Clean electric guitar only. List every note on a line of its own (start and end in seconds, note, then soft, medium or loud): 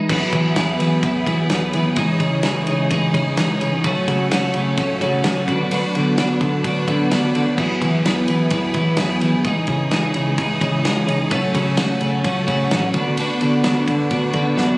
0.10 0.54 F#3 medium
0.10 0.35 B3 medium
0.10 0.35 E4 medium
0.10 0.33 G#4 loud
0.33 0.56 B3 medium
0.33 0.57 E4 medium
0.33 0.58 G#4 medium
0.55 1.01 F#3 medium
0.55 0.81 B3 loud
0.55 0.81 E4 loud
0.55 0.79 G#4 loud
0.80 1.03 B3 medium
0.80 1.03 E4 medium
0.80 1.04 G#4 medium
1.02 1.28 F#3 medium
1.02 1.28 B3 medium
1.02 1.26 E4 medium
1.02 1.25 G#4 medium
1.27 1.48 F#3 medium
1.27 1.49 B3 medium
1.27 1.50 E4 medium
1.27 1.51 G#4 medium
1.49 1.95 F#3 medium
1.49 1.74 B3 medium
1.49 1.73 E4 medium
1.49 1.72 G#4 medium
1.73 1.96 B3 medium
1.73 1.96 E4 medium
1.73 1.95 G#4 medium
1.96 2.42 E3 medium
1.96 2.21 G#3 medium
1.96 2.20 D#4 medium
1.96 2.18 G#4 medium
2.19 2.43 G#3 medium
2.19 2.44 D#4 medium
2.19 2.45 G#4 medium
2.43 2.89 E3 loud
2.43 2.70 G#3 medium
2.43 2.68 D#4 medium
2.43 2.66 G#4 loud
2.67 2.90 G#3 medium
2.67 2.91 D#4 medium
2.67 2.92 G#4 medium
2.90 3.16 E3 medium
2.90 3.15 G#3 medium
2.90 3.14 D#4 medium
2.90 3.13 G#4 medium
3.14 3.36 E3 medium
3.14 3.37 G#3 medium
3.14 3.38 D#4 medium
3.14 3.39 G#4 medium
3.37 3.82 E3 medium
3.37 3.62 G#3 medium
3.37 3.61 D#4 medium
3.37 3.59 G#4 medium
3.60 3.84 G#3 medium
3.60 3.83 D#4 medium
3.60 3.82 G#4 medium
3.84 4.31 F#3 medium
3.84 4.10 A3 medium
3.84 4.08 C#4 medium
3.84 4.07 F#4 loud
4.08 4.31 A3 medium
4.08 4.32 C#4 medium
4.08 4.34 F#4 medium
4.31 4.78 F#3 loud
4.31 4.57 A3 loud
4.31 4.55 C#4 loud
4.31 4.55 F#4 loud
4.55 4.78 A3 medium
4.55 4.79 C#4 medium
4.55 4.81 F#4 medium
4.78 5.04 F#3 medium
4.78 5.02 A3 medium
4.78 5.01 C#4 medium
4.78 5.01 F#4 medium
5.01 5.23 F#3 medium
5.01 5.23 A3 medium
5.01 5.25 C#4 medium
5.01 5.26 F#4 medium
5.24 5.49 F#3 medium
5.24 5.46 A3 medium
5.24 5.47 C#4 medium
5.24 5.47 F#4 medium
5.47 5.70 F#3 medium
5.47 5.71 B3 medium
5.47 5.71 D4 medium
5.47 5.73 F#4 medium
5.71 6.17 F#3 medium
5.71 5.97 B3 medium
5.71 5.95 D4 medium
5.71 5.94 F#4 medium
5.95 6.18 B3 medium
5.95 6.19 D4 medium
5.95 6.20 F#4 medium
6.18 6.64 F#3 medium
6.18 6.44 B3 loud
6.18 6.41 D4 loud
6.18 6.40 F#4 loud
6.40 6.64 B3 medium
6.40 6.66 D4 medium
6.40 6.67 F#4 medium
6.64 6.90 F#3 medium
6.64 6.89 B3 medium
6.64 6.88 D4 medium
6.64 6.86 F#4 medium
6.88 7.09 F#3 medium
6.88 7.10 B3 medium
6.88 7.11 D4 medium
6.88 7.12 F#4 medium
7.10 7.55 F#3 medium
7.10 7.36 B3 medium
7.10 7.35 D4 medium
7.10 7.33 F#4 medium
7.34 7.56 B3 medium
7.34 7.57 D4 medium
7.34 7.56 F#4 medium
7.56 8.04 F#3 medium
7.56 7.83 B3 medium
7.56 7.82 E4 medium
7.56 7.80 G#4 medium
7.81 8.05 B3 medium
7.81 8.07 E4 medium
7.81 8.08 G#4 medium
8.05 8.50 F#3 medium
8.05 8.30 B3 loud
8.05 8.29 E4 loud
8.05 8.28 G#4 loud
8.28 8.51 B3 medium
8.28 8.52 E4 medium
8.28 8.53 G#4 medium
8.51 8.77 F#3 medium
8.51 8.76 B3 medium
8.51 8.75 E4 medium
8.51 8.74 G#4 medium
8.75 8.97 F#3 medium
8.75 8.98 B3 medium
8.75 8.99 E4 medium
8.75 9.00 G#4 medium
8.98 9.43 F#3 medium
8.98 9.24 B3 medium
8.98 9.23 E4 medium
8.98 9.21 G#4 medium
9.22 9.45 B3 medium
9.22 9.45 E4 medium
9.22 9.44 G#4 medium
9.44 9.91 E3 medium
9.44 9.71 G#3 medium
9.44 9.70 D#4 medium
9.44 9.68 G#4 loud
9.69 9.92 G#3 medium
9.69 9.93 D#4 medium
9.69 9.94 G#4 medium
9.92 10.37 E3 medium
9.92 10.17 G#3 medium
9.92 10.15 D#4 loud
9.92 10.13 G#4 loud
10.15 10.38 G#3 medium
10.15 10.39 D#4 medium
10.15 10.40 G#4 medium
10.38 10.62 E3 medium
10.38 10.61 G#3 medium
10.38 10.60 D#4 medium
10.38 10.59 G#4 medium
10.60 10.82 E3 medium
10.60 10.84 G#3 medium
10.60 10.84 D#4 medium
10.60 10.85 G#4 medium
10.84 11.29 E3 medium
10.84 11.08 G#3 medium
10.84 11.07 D#4 medium
10.84 11.05 G#4 medium
11.06 11.31 G#3 medium
11.06 11.30 D#4 medium
11.06 11.29 G#4 medium
11.30 11.77 F#3 medium
11.30 11.55 A3 loud
11.30 11.54 C#4 loud
11.30 11.53 F#4 medium
11.53 11.78 A3 medium
11.53 11.78 C#4 medium
11.53 11.80 F#4 medium
11.78 12.23 F#3 loud
11.78 12.02 A3 loud
11.78 12.01 C#4 loud
11.78 12.00 F#4 loud
12.01 12.23 A3 medium
12.01 12.24 C#4 medium
12.01 12.25 F#4 medium
12.24 12.49 F#3 medium
12.24 12.47 A3 medium
12.24 12.47 C#4 medium
12.24 12.46 F#4 medium
12.47 12.70 F#3 medium
12.47 12.71 A3 medium
12.47 12.72 C#4 medium
12.47 12.72 F#4 medium
12.71 12.93 F#3 medium
12.71 12.94 A3 medium
12.71 12.94 C#4 medium
12.71 12.93 F#4 medium
12.94 13.16 B3 medium
12.94 13.18 D4 medium
12.94 13.19 F#4 medium
13.18 13.62 B3 medium
13.18 13.41 D4 medium
13.18 13.38 F#4 loud
13.40 13.64 D4 medium
13.40 13.65 F#4 medium
13.63 14.09 B3 loud
13.63 13.88 D4 loud
13.63 13.85 F#4 loud
13.87 14.10 D4 medium
13.87 14.12 F#4 medium
14.10 14.35 B3 medium
14.10 14.34 D4 medium
14.10 14.32 F#4 medium
14.34 14.54 B3 medium
14.34 14.57 D4 medium
14.34 14.57 F#4 medium
14.55 14.78 B3 medium
14.55 14.78 D4 medium
14.55 14.78 F#4 medium